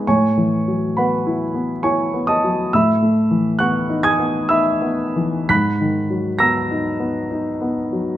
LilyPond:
<<
  \new Staff \with { instrumentName = "Grand piano" } { \time 3/4 \key a \lydian \tempo 4 = 66 <cis'' gis'' cis'''>4 <b' fis'' b''>4 <cis'' gis'' cis'''>8 <dis'' a'' dis'''>8 | <e'' b'' e'''>4 <fis'' cis''' fis'''>8 <gis'' dis''' gis'''>8 <e'' b'' e'''>4 | <b'' fis''' b'''>4 <ais'' e''' ais'''>2 | }
  \new Staff \with { instrumentName = "Grand piano" } { \time 3/4 \key a \lydian \tuplet 3/2 { a,8 e8 fis8 b8 e'8 b8 e'8 b8 fis8 } | \tuplet 3/2 { a,8 a8 e8 b8 dis'8 b8 dis'8 b8 e8 } | \tuplet 3/2 { gis,8 dis8 fis8 b8 dis'8 b8 dis'8 b8 fis8 } | }
>>